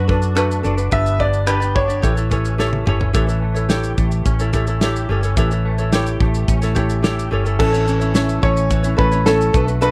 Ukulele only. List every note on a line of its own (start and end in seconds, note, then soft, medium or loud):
0.07 0.35 D4 medium
0.07 0.35 F#4 medium
0.07 0.34 A4 medium
0.07 0.36 B4 medium
0.35 0.63 D4 medium
0.35 0.64 F#4 medium
0.35 0.62 A4 medium
0.35 0.65 B4 medium
0.63 0.78 D4 medium
0.63 0.78 F#4 medium
0.63 0.78 A4 medium
0.63 0.76 B4 medium
0.77 0.91 D4 soft
0.77 0.92 F#4 soft
0.77 0.90 B4 soft
0.91 1.19 D4 medium
0.91 1.20 G4 medium
0.91 1.18 B4 medium
0.91 1.21 D5 medium
1.19 1.46 D4 medium
1.19 1.46 G4 medium
1.19 1.45 B4 medium
1.19 1.47 D5 medium
1.46 1.62 D4 medium
1.46 1.61 G4 medium
1.46 1.61 B4 medium
1.46 1.59 D5 medium
1.60 1.89 D4 soft
1.60 1.88 G4 medium
1.60 1.87 D5 medium
1.88 2.03 D4 soft
1.88 2.01 G4 soft
1.88 2.03 D5 soft
2.02 2.17 E4 medium
2.02 2.15 G4 medium
2.02 2.16 A4 medium
2.02 2.14 C#5 medium
2.15 2.30 E4 soft
2.15 2.31 A4 medium
2.15 2.30 C#5 medium
2.30 2.58 E4 medium
2.30 2.57 G4 medium
2.30 2.58 A4 medium
2.30 2.59 C#5 medium
2.58 2.86 E4 medium
2.58 2.84 G4 medium
2.58 2.86 A4 medium
2.58 2.87 C#5 medium
2.86 3.01 E4 medium
2.86 3.00 G4 medium
2.86 2.99 A4 medium
2.86 2.98 C#5 medium
3.00 3.12 E4 soft
3.00 3.13 A4 medium
3.00 3.14 C#5 medium
3.13 3.28 E4 medium
3.13 3.28 G4 medium
3.13 3.27 A4 medium
3.13 3.26 C#5 medium
3.27 3.56 E4 soft
3.27 3.54 A4 soft
3.27 3.53 C#5 medium
3.54 3.68 E4 soft
3.54 3.69 A4 medium
3.54 3.69 C#5 medium
3.69 4.42 E4 medium
3.69 4.39 G4 medium
3.69 4.40 A4 medium
3.69 4.39 C#5 medium
4.39 4.52 E4 medium
4.39 4.54 A4 medium
4.39 4.54 C#5 medium
4.53 4.68 E4 medium
4.53 4.67 G4 medium
4.53 4.67 A4 medium
4.53 4.66 C#5 medium
4.67 4.81 E4 soft
4.67 4.81 A4 medium
4.67 4.81 C#5 medium
4.81 5.09 E4 medium
4.81 5.08 G4 medium
4.81 5.10 A4 medium
4.81 5.10 C#5 loud
5.09 5.24 E4 medium
5.09 5.23 G4 medium
5.09 5.22 A4 medium
5.09 5.22 C#5 medium
5.23 5.36 E4 soft
5.23 5.37 A4 medium
5.23 5.37 C#5 medium
5.37 5.51 E4 medium
5.37 5.51 G4 medium
5.37 5.51 A4 loud
5.37 5.49 C#5 medium
5.50 5.80 E4 medium
5.50 5.79 A4 medium
5.50 5.77 C#5 medium
5.78 5.92 E4 soft
5.78 5.93 A4 medium
5.78 5.92 C#5 medium
5.93 6.64 E4 medium
5.93 6.61 G4 medium
5.93 6.63 A4 medium
5.93 6.62 C#5 loud
6.62 6.75 E4 medium
6.62 6.75 A4 medium
6.62 6.74 C#5 medium
6.75 7.02 E4 medium
6.75 7.01 G4 medium
6.75 7.03 C#5 medium
7.02 7.30 E4 medium
7.02 7.30 G4 medium
7.02 7.31 A4 medium
7.02 7.32 C#5 medium
7.31 7.46 E4 medium
7.31 7.45 G4 medium
7.31 7.45 A4 medium
7.31 7.44 C#5 medium
7.45 7.59 E4 soft
7.45 7.58 A4 medium
7.45 7.59 C#5 medium
7.59 7.74 C#4 medium
7.59 7.73 E4 medium
7.59 7.73 A4 medium
7.59 7.71 C#5 medium
7.73 7.87 C#4 soft
7.73 7.87 E4 medium
7.73 7.87 C#5 medium
7.86 8.01 C#4 medium
7.86 8.00 E4 medium
7.86 8.01 A4 medium
7.86 7.98 C#5 medium
8.00 8.13 C#4 soft
8.00 8.14 E4 medium
8.00 8.14 C#5 medium
8.14 8.42 C#4 medium
8.14 8.43 E4 medium
8.14 8.41 A4 medium
8.14 8.43 C#5 medium
8.42 8.85 C#4 medium
8.42 8.83 E4 medium
8.42 8.84 A4 medium
8.42 8.82 C#5 medium
8.83 8.96 C#4 soft
8.83 8.97 E4 medium
8.83 8.98 C#5 medium
8.97 9.12 C#4 medium
8.97 9.12 E4 medium
8.97 9.12 A4 medium
8.97 9.10 C#5 medium
9.12 9.25 C#4 soft
9.12 9.26 E4 soft
9.12 9.26 C#5 medium
9.26 9.54 C#4 medium
9.26 9.55 E4 medium
9.26 9.52 A4 medium
9.26 9.55 C#5 medium
9.53 9.68 D4 medium
9.53 9.68 F#4 medium
9.53 9.68 A4 medium
9.53 9.66 B4 medium
9.67 9.80 D4 soft
9.67 9.81 F#4 soft
9.67 9.81 B4 soft
9.81 9.91 D4 medium
9.81 9.91 F#4 medium
9.81 9.91 A4 medium
9.81 9.91 B4 medium